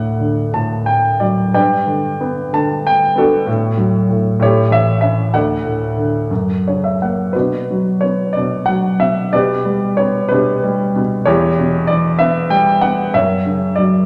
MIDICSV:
0, 0, Header, 1, 2, 480
1, 0, Start_track
1, 0, Key_signature, 2, "major"
1, 0, Tempo, 665927
1, 1106, Time_signature, 6, 3, 24, 8
1, 2053, Tempo, 623053
1, 4453, Tempo, 683371
1, 5421, Key_signature, 2, "minor"
1, 5893, Tempo, 655022
1, 7813, Tempo, 630252
1, 10420, End_track
2, 0, Start_track
2, 0, Title_t, "Grand piano"
2, 0, Program_c, 0, 0
2, 0, Control_c, 0, 64, 127
2, 0, Note_on_c, 0, 38, 46
2, 0, Note_on_c, 0, 45, 37
2, 0, Note_on_c, 0, 69, 47
2, 0, Note_on_c, 0, 74, 50
2, 0, Note_on_c, 0, 78, 70
2, 142, Note_on_c, 0, 50, 38
2, 350, Note_off_c, 0, 74, 0
2, 352, Note_off_c, 0, 69, 0
2, 372, Note_off_c, 0, 45, 0
2, 383, Note_on_c, 0, 45, 45
2, 388, Note_on_c, 0, 81, 67
2, 402, Note_off_c, 0, 78, 0
2, 609, Note_off_c, 0, 81, 0
2, 621, Note_on_c, 0, 79, 65
2, 865, Note_on_c, 0, 74, 57
2, 870, Note_on_c, 0, 54, 38
2, 871, Note_off_c, 0, 79, 0
2, 1080, Note_off_c, 0, 50, 0
2, 1082, Note_off_c, 0, 38, 0
2, 1086, Note_off_c, 0, 45, 0
2, 1102, Note_off_c, 0, 54, 0
2, 1103, Note_off_c, 0, 74, 0
2, 1111, Note_on_c, 0, 71, 54
2, 1113, Note_on_c, 0, 43, 57
2, 1113, Note_on_c, 0, 79, 70
2, 1114, Note_on_c, 0, 74, 58
2, 1116, Control_c, 0, 64, 0
2, 1250, Control_c, 0, 64, 127
2, 1346, Note_on_c, 0, 50, 40
2, 1590, Note_on_c, 0, 59, 46
2, 1795, Note_off_c, 0, 71, 0
2, 1796, Note_off_c, 0, 74, 0
2, 1811, Note_off_c, 0, 50, 0
2, 1822, Note_on_c, 0, 50, 50
2, 1830, Note_on_c, 0, 81, 75
2, 1846, Note_off_c, 0, 79, 0
2, 2065, Note_off_c, 0, 81, 0
2, 2067, Note_on_c, 0, 79, 78
2, 2277, Note_off_c, 0, 59, 0
2, 2289, Note_on_c, 0, 59, 46
2, 2308, Note_on_c, 0, 69, 74
2, 2310, Note_off_c, 0, 79, 0
2, 2310, Note_on_c, 0, 66, 51
2, 2312, Note_on_c, 0, 62, 51
2, 2508, Note_off_c, 0, 43, 0
2, 2514, Note_off_c, 0, 50, 0
2, 2525, Note_off_c, 0, 59, 0
2, 2527, Note_on_c, 0, 45, 61
2, 2546, Control_c, 0, 64, 0
2, 2700, Control_c, 0, 64, 127
2, 2765, Note_on_c, 0, 54, 45
2, 2999, Note_off_c, 0, 45, 0
2, 3010, Note_on_c, 0, 45, 47
2, 3228, Note_off_c, 0, 66, 0
2, 3229, Note_off_c, 0, 62, 0
2, 3233, Note_off_c, 0, 54, 0
2, 3234, Note_off_c, 0, 45, 0
2, 3245, Note_on_c, 0, 45, 66
2, 3260, Control_c, 0, 64, 0
2, 3265, Note_on_c, 0, 64, 49
2, 3268, Note_on_c, 0, 73, 73
2, 3270, Note_on_c, 0, 67, 55
2, 3286, Note_off_c, 0, 69, 0
2, 3399, Control_c, 0, 64, 127
2, 3484, Note_on_c, 0, 52, 47
2, 3497, Note_on_c, 0, 76, 78
2, 3505, Note_off_c, 0, 73, 0
2, 3707, Note_off_c, 0, 76, 0
2, 3718, Note_on_c, 0, 76, 64
2, 3732, Note_on_c, 0, 61, 44
2, 3938, Note_off_c, 0, 45, 0
2, 3939, Note_off_c, 0, 64, 0
2, 3941, Note_off_c, 0, 67, 0
2, 3946, Note_off_c, 0, 52, 0
2, 3958, Note_off_c, 0, 61, 0
2, 3965, Note_off_c, 0, 76, 0
2, 3971, Note_on_c, 0, 38, 57
2, 3971, Note_on_c, 0, 78, 71
2, 3974, Control_c, 0, 64, 0
2, 3975, Note_on_c, 0, 74, 51
2, 3977, Note_on_c, 0, 69, 52
2, 4121, Control_c, 0, 64, 127
2, 4206, Note_on_c, 0, 45, 40
2, 4458, Note_on_c, 0, 50, 39
2, 4675, Note_off_c, 0, 38, 0
2, 4680, Note_off_c, 0, 45, 0
2, 4687, Note_off_c, 0, 50, 0
2, 4696, Note_on_c, 0, 42, 51
2, 4701, Control_c, 0, 64, 0
2, 4806, Control_c, 0, 64, 127
2, 4953, Note_on_c, 0, 73, 47
2, 4956, Note_on_c, 0, 49, 35
2, 5058, Note_off_c, 0, 73, 0
2, 5068, Note_on_c, 0, 76, 42
2, 5155, Note_off_c, 0, 78, 0
2, 5156, Note_off_c, 0, 74, 0
2, 5157, Note_off_c, 0, 69, 0
2, 5176, Note_off_c, 0, 76, 0
2, 5196, Note_on_c, 0, 58, 38
2, 5196, Note_on_c, 0, 78, 42
2, 5401, Note_off_c, 0, 42, 0
2, 5412, Note_off_c, 0, 78, 0
2, 5412, Note_on_c, 0, 71, 59
2, 5416, Note_off_c, 0, 49, 0
2, 5422, Note_off_c, 0, 58, 0
2, 5426, Note_on_c, 0, 66, 44
2, 5427, Note_on_c, 0, 62, 41
2, 5431, Control_c, 0, 64, 0
2, 5440, Note_on_c, 0, 47, 52
2, 5532, Control_c, 0, 64, 127
2, 5676, Note_on_c, 0, 54, 42
2, 5888, Note_on_c, 0, 73, 63
2, 5903, Note_off_c, 0, 71, 0
2, 5909, Note_on_c, 0, 59, 38
2, 6106, Note_off_c, 0, 62, 0
2, 6106, Note_off_c, 0, 66, 0
2, 6123, Note_on_c, 0, 74, 59
2, 6137, Note_off_c, 0, 73, 0
2, 6141, Note_off_c, 0, 47, 0
2, 6152, Note_on_c, 0, 47, 54
2, 6364, Note_on_c, 0, 78, 72
2, 6373, Note_off_c, 0, 74, 0
2, 6375, Note_off_c, 0, 54, 0
2, 6386, Note_on_c, 0, 54, 48
2, 6600, Note_off_c, 0, 47, 0
2, 6611, Note_on_c, 0, 47, 46
2, 6614, Note_on_c, 0, 76, 69
2, 6615, Note_off_c, 0, 78, 0
2, 6834, Note_off_c, 0, 59, 0
2, 6847, Note_off_c, 0, 47, 0
2, 6848, Note_off_c, 0, 54, 0
2, 6855, Note_on_c, 0, 74, 77
2, 6858, Note_on_c, 0, 47, 61
2, 6863, Note_off_c, 0, 76, 0
2, 6865, Control_c, 0, 64, 0
2, 6867, Note_on_c, 0, 67, 56
2, 6868, Note_on_c, 0, 71, 54
2, 6985, Control_c, 0, 64, 127
2, 7094, Note_on_c, 0, 55, 48
2, 7326, Note_on_c, 0, 73, 72
2, 7343, Note_on_c, 0, 59, 52
2, 7353, Note_off_c, 0, 74, 0
2, 7547, Note_off_c, 0, 71, 0
2, 7553, Note_off_c, 0, 67, 0
2, 7558, Note_on_c, 0, 71, 75
2, 7569, Note_off_c, 0, 47, 0
2, 7577, Note_off_c, 0, 73, 0
2, 7577, Note_on_c, 0, 67, 47
2, 7578, Note_on_c, 0, 62, 52
2, 7580, Note_on_c, 0, 47, 63
2, 7803, Note_off_c, 0, 55, 0
2, 7814, Note_on_c, 0, 55, 55
2, 8048, Note_off_c, 0, 47, 0
2, 8059, Note_on_c, 0, 47, 54
2, 8078, Note_off_c, 0, 71, 0
2, 8271, Note_off_c, 0, 67, 0
2, 8272, Note_off_c, 0, 62, 0
2, 8275, Note_off_c, 0, 59, 0
2, 8286, Note_on_c, 0, 73, 83
2, 8288, Note_off_c, 0, 55, 0
2, 8295, Note_off_c, 0, 47, 0
2, 8295, Note_on_c, 0, 40, 74
2, 8298, Note_on_c, 0, 64, 60
2, 8298, Note_on_c, 0, 67, 63
2, 8312, Control_c, 0, 64, 0
2, 8460, Control_c, 0, 64, 127
2, 8534, Note_on_c, 0, 47, 51
2, 8757, Note_on_c, 0, 74, 77
2, 8776, Note_on_c, 0, 52, 47
2, 8789, Note_off_c, 0, 73, 0
2, 8984, Note_off_c, 0, 64, 0
2, 8984, Note_off_c, 0, 67, 0
2, 8995, Note_on_c, 0, 76, 81
2, 9006, Note_on_c, 0, 59, 58
2, 9012, Note_off_c, 0, 74, 0
2, 9235, Note_on_c, 0, 55, 48
2, 9238, Note_on_c, 0, 79, 83
2, 9247, Note_off_c, 0, 76, 0
2, 9453, Note_off_c, 0, 47, 0
2, 9466, Note_off_c, 0, 59, 0
2, 9474, Note_on_c, 0, 78, 72
2, 9477, Note_on_c, 0, 59, 49
2, 9487, Note_off_c, 0, 79, 0
2, 9691, Note_off_c, 0, 40, 0
2, 9694, Note_off_c, 0, 52, 0
2, 9702, Note_off_c, 0, 55, 0
2, 9713, Note_off_c, 0, 59, 0
2, 9720, Note_on_c, 0, 42, 55
2, 9723, Note_on_c, 0, 76, 74
2, 9726, Note_off_c, 0, 78, 0
2, 9735, Control_c, 0, 64, 0
2, 9739, Note_on_c, 0, 70, 54
2, 9743, Note_on_c, 0, 73, 54
2, 9884, Control_c, 0, 64, 127
2, 9964, Note_on_c, 0, 49, 43
2, 10190, Note_on_c, 0, 74, 69
2, 10212, Note_on_c, 0, 54, 41
2, 10221, Note_off_c, 0, 76, 0
2, 10418, Note_off_c, 0, 73, 0
2, 10420, Note_off_c, 0, 42, 0
2, 10420, Note_off_c, 0, 49, 0
2, 10420, Note_off_c, 0, 54, 0
2, 10420, Note_off_c, 0, 70, 0
2, 10420, Note_off_c, 0, 74, 0
2, 10420, End_track
0, 0, End_of_file